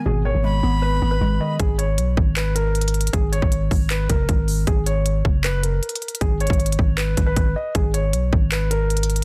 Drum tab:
HH |------------------------------------------------|x-----x-----x-----------x-----x-----x-x-x-x-x-x-|x-----x-----x-----o-----x-----x-----x-----o-----|x-----x-----x-----------x-----x-----x-x-x-x-x-x-|
CP |------------------------------------------------|------------------------x-----------------------|------------------------x-----------------------|------------------------x-----------------------|
BD |------------------------------------------------|o-----------------o-----------------------------|o--------o--------o-----------o-----o-----------|o-----------------o-----------------------------|

HH |x-----x-x-x-x-x-x-------x-----x-----x-----------|x-----x-----x-----------x-----x-----x-x-x-x-x---|
CP |------------------------x-----------------------|------------------------x-----------------------|
BD |o--------o--------o-----------o-----o-----------|o-----------------o-----------------------------|